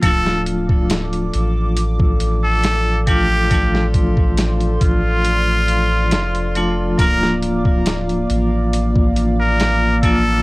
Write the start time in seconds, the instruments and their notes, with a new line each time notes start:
0.02 sub bass D1, vibraphone F3 A3 D4, analog synth pad A4 D5 F5 D6, muted trumpet A4, kick, closed hi-hat
0.07 vibraphone F4
0.26 snare
0.46 closed hi-hat
0.69 kick
0.90 snare, closed hi-hat
1.13 closed hi-hat
1.33 sub bass A1, closed hi-hat
1.77 closed hi-hat
2.00 kick
2.20 closed hi-hat
2.44 muted trumpet A4
2.63 snare, closed hi-hat
3.07 vibraphone F3 A3 D4 F4, muted trumpet G4, kick, closed hi-hat
3.50 vibraphone F3 A3 D4, analog synth pad C6, kick, closed hi-hat
3.54 vibraphone F4
3.75 snare
3.94 kick, closed hi-hat
4.17 kick
4.37 snare, closed hi-hat
4.60 closed hi-hat
4.81 sub bass A1, muted trumpet F4, kick, closed hi-hat
5.25 closed hi-hat
5.68 closed hi-hat
6.11 sub bass F1, snare, closed hi-hat
6.35 closed hi-hat
6.55 vibraphone F3 A3 D4 F4, closed hi-hat
6.98 sub bass D1, vibraphone F3 A#3 D4, analog synth pad A#3 D6, muted trumpet A#4, kick, closed hi-hat
7.02 vibraphone F4
7.23 snare
7.43 closed hi-hat
7.65 kick
7.86 snare, closed hi-hat
8.09 closed hi-hat
8.30 sub bass A1, closed hi-hat
8.73 closed hi-hat
8.96 kick
9.16 closed hi-hat
9.41 muted trumpet A#4
9.60 snare, closed hi-hat
10.03 vibraphone F3 A#3 D4 F4, muted trumpet A4, kick, closed hi-hat